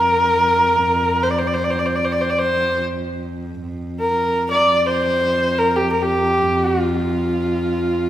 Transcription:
Already playing: cello F2, horsehead fiddle A#4
1.23 horsehead fiddle C5
1.30 horsehead fiddle D5
1.38 horsehead fiddle C5
1.47 horsehead fiddle D5
1.53 horsehead fiddle C5
1.64 horsehead fiddle D5
1.71 horsehead fiddle C5
1.79 horsehead fiddle D5
1.86 horsehead fiddle C5
1.95 horsehead fiddle D5
2.04 horsehead fiddle C5
2.12 horsehead fiddle D5
2.21 horsehead fiddle C5
2.30 horsehead fiddle D5
2.38 horsehead fiddle C5
3.62 cello F2
4.00 horsehead fiddle A#4
4.51 horsehead fiddle D5
4.79 horsehead fiddle D5
4.86 horsehead fiddle C5
5.58 horsehead fiddle A#4
5.76 horsehead fiddle G4
5.92 horsehead fiddle A#4
6.02 horsehead fiddle G4
6.66 horsehead fiddle F4

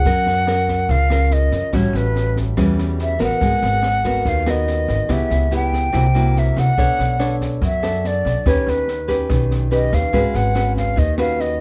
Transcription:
Already playing: flute F#5
0.05 upright bass F#2, nylon-string guitar F#3 C#4 A#4, kick, snare
0.26 upright bass F#2, snare
0.47 nylon-string guitar C#4 A#4, cross-stick, snare
0.68 kick, snare
0.89 upright bass C#2, nylon-string guitar C#3, flute F5, kick, snare
1.10 nylon-string guitar C#4 F4 A#4, cross-stick, snare
1.31 flute D#5, snare
1.52 upright bass F#2, kick, snare
1.73 upright bass A1, nylon-string guitar A2 G3 C#4 F#4, flute C#5, kick, cross-stick, snare
1.93 upright bass A1, flute B4, snare
2.15 snare
2.36 kick, snare
2.57 upright bass E2, nylon-string guitar E3 G3 C#4 F#4, kick, cross-stick, snare
2.78 snare
2.99 flute E5, snare
3.19 upright bass A1, nylon-string guitar B3 F#4 A#4, flute F#5, kick, cross-stick, snare
3.41 upright bass G#1, nylon-string guitar G#3, kick, snare
3.62 upright bass G#1, snare
3.83 cross-stick, snare
4.04 nylon-string guitar B3 F#4 A#4, kick, snare
4.25 upright bass D#2, nylon-string guitar D#3, flute F5, kick, snare
4.46 nylon-string guitar B3 F#4 A#4, flute D#5, cross-stick, snare
4.67 snare
4.88 upright bass G#1, kick, snare
5.09 upright bass C#2, nylon-string guitar C#3 B3 E4 G4, kick, cross-stick, snare
5.13 flute E5
5.30 upright bass C#2, snare
5.51 nylon-string guitar B3 E4 G4, snare
5.56 flute G5
5.73 kick, snare
5.92 upright bass C2, nylon-string guitar C3 A#3 E4 F#4, kick, cross-stick, snare
6.15 nylon-string guitar A#3 E4 F#4, snare
6.36 flute E5, snare
6.56 upright bass C2, flute F#5, kick, cross-stick, snare
6.78 upright bass B1, nylon-string guitar B3 D4 A4 C#5, kick, snare
6.99 upright bass B1, snare
7.19 nylon-string guitar D4 A4 C#5, cross-stick, snare
7.41 kick, snare
7.62 upright bass F#2, nylon-string guitar F#3, flute E5, kick, snare
7.83 nylon-string guitar D4 A4, cross-stick, snare
8.04 flute D5, snare
8.25 upright bass B1, kick, snare
8.46 upright bass D#2, nylon-string guitar D#3 C#4 G4 B4, flute C#5, kick, cross-stick, snare
8.67 upright bass D#2, flute B4, snare
8.88 snare
9.08 nylon-string guitar C#4 G4 B4, kick, snare
9.29 upright bass B1, nylon-string guitar D#3, kick, cross-stick, snare
9.51 snare
9.71 nylon-string guitar C#4 G4 B4, flute D#5, snare
9.92 upright bass D#2, flute F5, kick, cross-stick, snare
10.13 upright bass G#1, nylon-string guitar G#3 C#4 F#4 B4, kick, snare
10.34 upright bass G#1, flute F#5, snare
10.55 nylon-string guitar C#4 F#4 B4, cross-stick, snare
10.76 flute F5, kick, snare
10.96 upright bass D#2, nylon-string guitar D#3, flute D#5, kick, snare
11.18 nylon-string guitar C#4 F#4 B4, flute F5, cross-stick, snare
11.40 flute D#5, snare

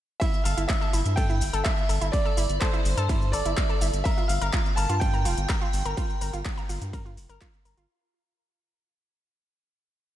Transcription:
0.20 synth arpeggio sound E4, grand piano E5, digital synth lead E5, kick, closed hi-hat, ride, shaker
0.34 shaker
0.44 analog synth bass G1, synth arpeggio sound A4, digital synth lead F5, grand piano F5, open hi-hat, shaker
0.57 analog synth bass G1, synth arpeggio sound E4, closed hi-hat, shaker
0.68 grand piano E5, digital synth lead E5, kick, clap, closed hi-hat, ride, shaker
0.81 synth arpeggio sound A4, shaker
0.93 analog synth bass G1, synth arpeggio sound E4, open hi-hat, shaker
1.06 analog synth bass G2, closed hi-hat, shaker
1.16 synth arpeggio sound A4, digital synth lead G5, grand piano G5, kick, closed hi-hat, ride, shaker
1.29 synth arpeggio sound E4, shaker
1.41 analog synth bass G1, open hi-hat, shaker
1.53 analog synth bass G1, synth arpeggio sound A4, closed hi-hat, shaker
1.64 synth arpeggio sound E4, grand piano E5, digital synth lead E5, kick, clap, closed hi-hat, ride, shaker
1.78 shaker
1.89 analog synth bass G1, synth arpeggio sound A4, open hi-hat, shaker
2.01 analog synth bass G1, synth arpeggio sound E4, closed hi-hat, shaker
2.12 grand piano D5, digital synth lead D5, kick, closed hi-hat, ride, shaker
2.25 synth arpeggio sound A4, shaker
2.37 analog synth bass G1, synth arpeggio sound E4, open hi-hat, shaker
2.49 analog synth bass G1, closed hi-hat, shaker
2.60 synth arpeggio sound A4, digital synth lead C5, grand piano C5, kick, clap, closed hi-hat, ride, shaker
2.73 synth arpeggio sound E4, shaker
2.85 analog synth bass G1, open hi-hat, shaker
2.97 analog synth bass G2, synth arpeggio sound A4, closed hi-hat, shaker
3.09 synth arpeggio sound E4, kick, closed hi-hat, ride, shaker
3.22 shaker
3.32 analog synth bass G1, synth arpeggio sound A4, grand piano D5, digital synth lead D5, open hi-hat, shaker
3.45 analog synth bass G1, synth arpeggio sound E4, closed hi-hat, shaker
3.57 kick, clap, closed hi-hat, ride, shaker
3.70 synth arpeggio sound A4, shaker
3.81 analog synth bass G1, synth arpeggio sound E4, open hi-hat, shaker
3.93 analog synth bass G1, closed hi-hat, shaker
4.04 synth arpeggio sound A#4, grand piano E5, digital synth lead E5, kick, closed hi-hat, ride, shaker
4.18 synth arpeggio sound F4, shaker
4.28 analog synth bass G1, digital synth lead F5, grand piano F5, open hi-hat, shaker
4.41 analog synth bass G1, synth arpeggio sound A#4, closed hi-hat, shaker
4.53 synth arpeggio sound F4, kick, clap, closed hi-hat, ride, shaker
4.66 shaker
4.76 analog synth bass G1, synth arpeggio sound A#4, grand piano A5, digital synth lead A5, open hi-hat, shaker
4.89 analog synth bass G2, synth arpeggio sound F4, closed hi-hat, shaker
5.00 grand piano G5, digital synth lead G5, kick, closed hi-hat, ride, shaker
5.14 synth arpeggio sound A#4, shaker
5.25 analog synth bass F1, synth arpeggio sound F4, open hi-hat, shaker
5.38 analog synth bass G1, closed hi-hat, shaker
5.49 synth arpeggio sound A#4, kick, clap, closed hi-hat, ride, shaker
5.61 synth arpeggio sound F4, shaker
5.73 analog synth bass G1, open hi-hat, shaker
5.85 analog synth bass G1, synth arpeggio sound A#4, closed hi-hat, shaker
5.97 synth arpeggio sound F4, kick, closed hi-hat, ride, shaker
6.10 shaker
6.21 analog synth bass G1, synth arpeggio sound A#4, open hi-hat, shaker
6.33 analog synth bass G1, synth arpeggio sound F4, closed hi-hat, shaker
6.45 kick, clap, closed hi-hat, ride, shaker
6.57 synth arpeggio sound A#4, shaker
6.69 analog synth bass G1, synth arpeggio sound F4, open hi-hat, shaker
6.82 analog synth bass G2, closed hi-hat, shaker
6.93 synth arpeggio sound A#4, kick, closed hi-hat, ride, shaker
7.05 synth arpeggio sound F4, shaker
7.17 analog synth bass F1, open hi-hat, shaker
7.29 analog synth bass G1, synth arpeggio sound A#4, closed hi-hat, shaker
7.41 synth arpeggio sound F4, kick, clap, closed hi-hat, ride, shaker
7.54 shaker
7.65 analog synth bass G1, synth arpeggio sound A#4, open hi-hat, shaker
7.77 analog synth bass G1, synth arpeggio sound F4, closed hi-hat, shaker

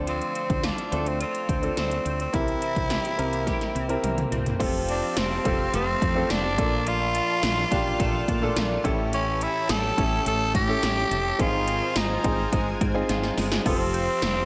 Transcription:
Already playing: fretless electric bass D2, grand piano D3 C4 D4 F4 A4 D5, clean electric guitar A3 C4
0.07 clean electric guitar F3, tenor saxophone C4, closed hi-hat
0.21 closed hi-hat
0.35 clean electric guitar C4, closed hi-hat
0.50 fretless electric bass D2, kick, closed hi-hat
0.63 tenor saxophone D4, clean electric guitar F4, snare, closed hi-hat
0.78 closed hi-hat
0.92 fretless electric bass D2, clean electric guitar A3, grand piano C4 D4 F4 A4, closed hi-hat
1.06 tenor saxophone C4, closed hi-hat
1.20 tenor saxophone C4, clean electric guitar F4, closed hi-hat
1.35 closed hi-hat
1.49 fretless electric bass D2, clean electric guitar C4, kick, closed hi-hat
1.62 grand piano C4 D4 F4 A4, closed hi-hat
1.77 fretless electric bass D2, clean electric guitar A3, tenor saxophone C4, snare, closed hi-hat
1.91 closed hi-hat
2.05 fretless electric bass D2, clean electric guitar C4, closed hi-hat
2.20 tenor saxophone C4, closed hi-hat
2.33 fretless electric bass C2, grand piano C3 C4 E4 G4 A#4, clean electric guitar E3, tenor saxophone E4, kick, closed hi-hat
2.48 closed hi-hat
2.62 clean electric guitar C4, closed hi-hat
2.76 fretless electric bass C2, kick, closed hi-hat
2.90 clean electric guitar G4, snare, closed hi-hat
3.05 closed hi-hat
3.18 fretless electric bass C2, clean electric guitar A#3, grand piano C4 E4 G4 A#4, closed hi-hat
3.33 closed hi-hat
3.47 clean electric guitar G4, kick, snare, closed hi-hat
3.61 snare, closed hi-hat
3.75 fretless electric bass C2, clean electric guitar C4, closed hi-hat
3.89 grand piano C4 E4 G4 A#4, closed hi-hat
4.03 fretless electric bass C2, clean electric guitar A#3, grand piano A#5, closed hi-hat, mid tom
4.18 closed hi-hat, mid tom
4.32 fretless electric bass C2, clean electric guitar C4, closed hi-hat, floor tom
4.46 closed hi-hat, floor tom
4.60 fretless electric bass F1, clean electric guitar F3, grand piano C4 F4 G4 A4, string machine G4 F5 A5, kick, closed hi-hat, crash
4.89 clean electric guitar C4, tenor saxophone D4, closed hi-hat
5.17 fretless electric bass F1, tenor saxophone C4, clean electric guitar G4, snare, closed hi-hat, tambourine
5.44 fretless electric bass F1, grand piano C4 F4 G4 A4, clean electric guitar C4, kick, closed hi-hat
5.73 fretless electric bass F1, clean electric guitar A3, tenor saxophone C4, closed hi-hat
6.02 fretless electric bass F2, clean electric guitar C4, kick, closed hi-hat
6.15 grand piano C4 F4 G4 A4
6.30 fretless electric bass F1, tenor saxophone D4, clean electric guitar G4, snare, closed hi-hat, tambourine
6.58 fretless electric bass A#1, grand piano A#2 A#3 D4 F4 A4, clean electric guitar F3, string machine D5 F5 A5, kick, closed hi-hat
6.86 clean electric guitar F3, tenor saxophone F4, closed hi-hat
7.15 clean electric guitar D4, closed hi-hat
7.43 fretless electric bass A#1, clean electric guitar F4, snare, closed hi-hat, tambourine
7.71 fretless electric bass A#1, grand piano A#2 D4 F4 G4, clean electric guitar D4, kick, closed hi-hat
8.00 fretless electric bass A#1, clean electric guitar A3, kick, closed hi-hat
8.28 fretless electric bass A#2, clean electric guitar D4, kick, closed hi-hat
8.42 grand piano A#2 D4 F4 A4
8.56 fretless electric bass A#1, clean electric guitar F4, snare, closed hi-hat, tambourine
8.84 fretless electric bass A1, grand piano A2 C#4 E4 G4 A4, clean electric guitar E3, string machine G4 C#5 A5, kick, closed hi-hat
9.13 clean electric guitar E3, tenor saxophone C#4, closed hi-hat
9.41 clean electric guitar C#4, tenor saxophone E4, closed hi-hat
9.69 fretless electric bass A1, clean electric guitar G4, tenor saxophone A4, snare, closed hi-hat, tambourine
9.97 fretless electric bass A1, grand piano C#4 E4 G4 A4, clean electric guitar C#4, kick, closed hi-hat
10.26 fretless electric bass A1, clean electric guitar A3, tenor saxophone A4, closed hi-hat
10.54 fretless electric bass A2, clean electric guitar C#4, tenor saxophone G4, kick, closed hi-hat
10.68 grand piano C#4 E4 G4 A4
10.83 fretless electric bass A1, clean electric guitar G4, snare, closed hi-hat, tambourine
11.11 fretless electric bass F1, clean electric guitar A3, closed hi-hat
11.39 fretless electric bass G#1, grand piano G#2 C4 D#4 F4 G#4, clean electric guitar D#3, string machine F4 C5 G#5, tenor saxophone F4, kick, closed hi-hat
11.68 clean electric guitar C4, closed hi-hat
11.96 fretless electric bass G#1, tenor saxophone D#4, clean electric guitar F4, snare, closed hi-hat, tambourine
12.24 fretless electric bass G#1, grand piano C4 D#4 F4 G#4, clean electric guitar C4, kick, closed hi-hat
12.52 fretless electric bass G#1, clean electric guitar G#3, kick, closed hi-hat
12.81 fretless electric bass G#2, clean electric guitar C4, kick, closed hi-hat
12.94 grand piano C4 D#4 F4 G#4
13.09 fretless electric bass G#1, clean electric guitar F4, snare, closed hi-hat
13.23 snare
13.37 fretless electric bass G1, clean electric guitar G#3, snare, open hi-hat
13.52 snare
13.65 fretless electric bass F1, clean electric guitar F3, grand piano C4 F4 G4 A4, tenor saxophone C4, string machine G4 F5 A5, kick, crash
13.94 clean electric guitar C4, closed hi-hat
14.22 fretless electric bass F1, clean electric guitar G4, snare, closed hi-hat, tambourine

